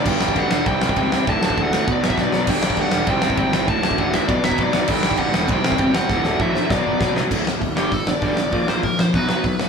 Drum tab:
CC |x---------------|----------------|x---------------|----------------|
RD |----x---x---x---|x---x---x-------|----x---x---x---|x---x---x---x---|
HH |----------------|----------------|----------------|----------------|
SD |--o---o---o---o-|--o---o---o-o-o-|--o---o---o---o-|--o---o---o---o-|
BD |o--oo---o--oo---|o--oo---o--oo---|o--oo---o--oo---|o--oo---o--oo---|

CC |x---------------|----------------|x---------------|----------------|
RD |----x---x---x---|----------------|----------------|----------------|
HH |----------------|----------------|----o---o---o---|o---o---o---o---|
SD |--o---o---o---o-|o-o---o-o---o-o-|--o---o---o---o-|--o---o---o---o-|
BD |o--oo---o--oo---|o---o---o---o---|o---o---o---o---|o---o---o---o---|